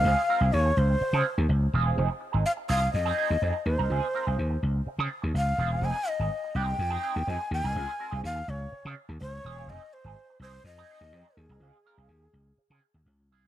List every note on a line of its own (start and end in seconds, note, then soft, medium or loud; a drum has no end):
0.00 0.55 F5 loud
0.04 0.14 C#2 loud
0.04 0.20 G#3 medium
0.04 0.20 C4 medium
0.04 0.20 F4 medium
0.04 0.20 G#4 medium
0.29 0.40 G#3 medium
0.29 0.40 C4 medium
0.29 0.41 F4 medium
0.29 0.41 A#4 medium
0.41 0.49 C2 medium
0.41 0.52 G#3 medium
0.41 0.51 C4 medium
0.41 0.52 F4 medium
0.41 0.52 G#4 medium
0.53 0.70 D#2 loud
0.53 0.79 C#5 loud
0.53 muted clean electric guitar stroke soft
0.66 muted clean electric guitar stroke medium
0.77 0.94 C#2 loud
0.77 1.25 C5 medium
0.90 muted clean electric guitar stroke medium
1.01 muted slap bass stroke medium
1.01 muted clean electric guitar stroke soft
1.13 1.21 C#3 loud
1.13 1.24 G#3 medium
1.13 1.25 C4 medium
1.13 1.26 F4 medium
1.13 1.25 G#4 medium
1.26 muted clean electric guitar stroke soft
1.38 1.46 D#2 medium
1.38 muted clean electric guitar stroke medium
1.49 1.66 C#2 loud
1.49 muted clean electric guitar stroke soft
1.62 muted clean electric guitar stroke soft
1.73 1.91 E1 loud
1.73 1.86 G#3 medium
1.73 1.86 C4 medium
1.73 1.85 F4 medium
1.73 1.84 G#4 medium
1.86 1.97 G#3 medium
1.86 1.96 C4 medium
1.86 1.96 F4 medium
1.86 1.96 G#4 medium
1.97 2.07 F1 loud
1.97 2.11 F3 medium
1.97 2.09 C4 medium
1.97 2.09 D#4 medium
1.97 2.08 G#4 medium
2.10 muted clean electric guitar stroke soft
2.20 muted clean electric guitar stroke soft
2.32 2.42 G#1 loud
2.32 2.44 F3 medium
2.32 2.44 C4 medium
2.32 2.43 D#4 medium
2.32 2.43 G#4 medium
2.46 2.52 F5 loud
2.57 muted clean electric guitar stroke medium
2.68 2.87 C2 loud
2.68 2.83 F3 medium
2.68 2.81 C4 medium
2.68 2.80 D#4 medium
2.68 2.80 G#4 loud
2.68 2.92 F5 loud
2.81 muted clean electric guitar stroke medium
2.92 3.11 F2 loud
2.92 3.67 D#5 loud
2.92 muted clean electric guitar stroke medium
3.05 3.15 F3 medium
3.05 3.16 C4 medium
3.05 3.17 D#4 medium
3.05 3.17 G#4 loud
3.17 3.28 F3 medium
3.17 3.29 C4 medium
3.17 3.29 D#4 medium
3.17 3.29 G#4 medium
3.30 3.38 D#2 medium
3.30 muted clean electric guitar stroke medium
3.42 3.51 F2 loud
3.42 3.56 F3 medium
3.42 3.54 C4 loud
3.42 3.54 D#4 medium
3.42 3.54 G#4 medium
3.55 muted clean electric guitar stroke soft
3.66 3.75 D#2 loud
3.66 4.62 C5 medium
3.66 muted clean electric guitar stroke soft
3.78 3.87 C2 loud
3.78 3.89 F3 medium
3.78 3.89 C4 medium
3.78 3.89 D#4 medium
3.78 3.88 A#4 medium
3.90 3.99 C#2 loud
3.90 4.04 G#3 medium
3.90 4.05 C4 medium
3.90 4.05 F4 medium
3.90 4.05 G#4 medium
4.14 4.25 G#3 medium
4.14 4.26 C4 medium
4.14 4.26 F4 medium
4.14 4.26 A#4 medium
4.27 4.35 C2 medium
4.27 4.36 G#3 medium
4.27 4.37 C4 medium
4.27 4.37 F4 medium
4.27 4.37 G#4 medium
4.37 4.56 D#2 medium
4.37 muted clean electric guitar stroke soft
4.50 muted clean electric guitar stroke medium
4.63 4.80 C#2 medium
4.75 muted clean electric guitar stroke soft
4.86 muted slap bass stroke medium
4.86 muted clean electric guitar stroke soft
4.98 5.07 C#3 loud
4.98 5.08 G#3 medium
4.98 5.09 C4 medium
4.98 5.09 F4 medium
4.98 5.10 G#4 loud
5.09 muted clean electric guitar stroke soft
5.22 5.31 D#2 medium
5.22 muted clean electric guitar stroke medium
5.34 5.51 C#2 medium
5.34 5.86 F5 loud
5.34 muted clean electric guitar stroke soft
5.47 muted clean electric guitar stroke soft
5.58 5.75 E1 loud
5.58 5.71 G#3 medium
5.58 5.71 C4 medium
5.58 5.70 F4 loud
5.58 5.70 G#4 loud
5.71 5.81 G#3 medium
5.71 5.82 C4 medium
5.71 5.81 F4 medium
5.71 5.81 G#4 medium
5.81 5.91 F1 loud
5.81 5.97 G#3 medium
5.81 5.96 C4 medium
5.81 5.96 D#4 medium
5.81 5.95 G#4 medium
5.81 6.10 G#5 loud
5.96 muted clean electric guitar stroke soft
6.07 6.58 D#5 loud
6.07 muted clean electric guitar stroke soft
6.19 6.27 G#1 medium
6.19 6.30 G#3 medium
6.19 6.30 C4 medium
6.19 6.30 D#4 medium
6.19 6.30 G#4 medium
6.44 muted clean electric guitar stroke medium
6.54 6.72 C2 medium
6.54 6.75 G#3 medium
6.54 6.67 C4 medium
6.54 6.66 D#4 loud
6.54 6.66 G#4 loud
6.54 7.32 G5 loud
6.67 muted clean electric guitar stroke soft
6.78 6.96 F2 loud
6.78 muted clean electric guitar stroke soft
6.90 7.01 G#3 medium
6.90 7.02 C4 medium
6.90 7.02 D#4 medium
6.90 7.03 G#4 loud
7.03 7.14 G#3 medium
7.03 7.14 C4 medium
7.03 7.14 D#4 medium
7.03 7.15 G#4 medium
7.16 7.24 D#2 medium
7.16 muted clean electric guitar stroke soft
7.27 7.36 F2 loud
7.27 7.41 G#3 medium
7.27 7.39 C4 medium
7.27 7.38 D#4 medium
7.27 7.38 G#4 medium
7.27 7.53 G#5 loud
7.39 muted clean electric guitar stroke medium
7.51 7.60 D#2 loud
7.51 7.66 G5 loud
7.51 muted clean electric guitar stroke soft
7.64 7.72 C2 loud
7.64 7.73 G#3 medium
7.64 7.74 C4 medium
7.64 7.74 D#4 medium
7.64 7.74 A#4 medium
7.64 8.21 G#5 loud
7.74 7.85 C#2 loud
7.74 7.89 G#3 medium
7.74 7.90 C4 medium
7.74 7.90 F4 medium
7.74 7.90 G#4 medium
7.99 8.11 G#3 medium
7.99 8.10 C4 medium
7.99 8.10 F4 medium
7.99 8.11 A#4 medium
8.11 8.20 C2 medium
8.11 8.22 G#3 medium
8.11 8.22 C4 medium
8.11 8.22 F4 medium
8.11 8.22 G#4 medium
8.23 8.41 D#2 loud
8.23 8.51 F5 loud
8.23 muted clean electric guitar stroke soft
8.36 muted clean electric guitar stroke soft
8.48 8.65 C#2 loud
8.48 8.97 C#5 medium
8.61 muted clean electric guitar stroke medium
8.72 muted clean electric guitar stroke medium
8.72 muted slap bass stroke medium
8.85 8.93 C#3 loud
8.85 8.95 G#3 medium
8.85 8.95 C4 medium
8.85 8.95 F4 medium
8.85 8.95 G#4 medium
8.96 muted clean electric guitar stroke medium
9.09 9.17 D#2 medium
9.09 muted clean electric guitar stroke medium
9.20 9.38 C#2 medium
9.20 9.71 C#5 loud
9.20 muted clean electric guitar stroke soft
9.34 muted clean electric guitar stroke medium
9.45 9.62 E1 loud
9.45 9.58 G#3 medium
9.45 9.57 C4 medium
9.45 9.57 F4 medium
9.45 9.56 G#4 loud
9.57 9.68 G#3 medium
9.57 9.68 C4 medium
9.57 9.68 F4 medium
9.57 9.67 G#4 medium
9.67 9.77 F1 loud
9.67 9.83 G#3 medium
9.67 9.83 C4 medium
9.67 9.82 D#4 medium
9.67 9.81 G#4 medium
9.67 9.95 D#5 loud
9.82 muted clean electric guitar stroke medium
9.93 10.41 C5 loud
9.93 muted clean electric guitar stroke medium
10.04 10.13 G#1 medium
10.04 10.16 G#3 medium
10.04 10.16 C4 medium
10.04 10.16 D#4 medium
10.04 10.16 G#4 medium
10.30 muted clean electric guitar stroke medium
10.40 10.57 C2 loud
10.40 10.55 G#3 medium
10.40 10.53 C4 loud
10.40 10.53 D#4 medium
10.40 10.52 G#4 loud
10.40 10.64 C5 loud
10.53 muted clean electric guitar stroke medium
10.64 10.81 F2 loud
10.64 11.40 D#5 loud
10.64 muted clean electric guitar stroke soft
10.78 10.89 G#3 medium
10.78 10.89 C4 medium
10.78 10.90 D#4 loud
10.78 10.90 G#4 medium
10.90 11.01 G#3 medium
10.90 11.01 C4 medium
10.90 11.01 D#4 medium
10.90 11.01 G#4 loud
11.01 11.13 D#2 medium
11.01 muted clean electric guitar stroke medium
11.13 11.22 F2 loud
11.13 11.28 G#3 medium
11.13 11.27 C4 loud
11.13 11.27 D#4 loud
11.13 11.26 G#4 medium
11.28 muted clean electric guitar stroke medium
11.37 11.46 D#2 loud
11.37 13.07 G#4 medium
11.37 muted clean electric guitar stroke soft
11.49 11.58 C2 loud
11.49 11.60 G#3 medium
11.49 11.61 C4 medium
11.49 11.60 D#4 medium
11.49 11.60 A#4 medium
11.60 11.70 C#2 loud
11.60 11.76 G#3 medium
11.60 11.76 C4 medium
11.60 11.76 F4 medium
11.60 11.77 G#4 medium
11.85 11.97 G#3 medium
11.85 11.97 C4 medium
11.85 11.97 F4 medium
11.85 11.97 A#4 medium
11.98 12.06 C2 medium
11.98 12.08 G#3 medium
11.98 12.08 C4 medium
11.98 12.08 F4 medium
11.98 12.08 G#4 medium
12.08 12.26 D#2 medium
12.08 muted clean electric guitar stroke soft
12.22 muted clean electric guitar stroke soft
12.33 12.51 C#2 medium
12.47 muted clean electric guitar stroke soft
12.58 muted slap bass stroke soft
12.58 muted clean electric guitar stroke soft
12.70 12.78 C#3 loud
12.70 12.82 G#3 medium
12.70 12.82 C4 medium
12.70 12.82 F4 medium
12.70 12.83 G#4 medium
12.83 muted clean electric guitar stroke soft
12.94 13.02 D#2 loud
12.94 muted clean electric guitar stroke medium
13.06 13.30 C#2 loud
13.06 muted clean electric guitar stroke soft
13.21 muted clean electric guitar stroke medium
13.30 13.47 C2 loud
13.30 13.45 G#3 medium
13.30 13.44 C4 medium
13.30 13.44 F4 loud
13.30 13.44 G#4 loud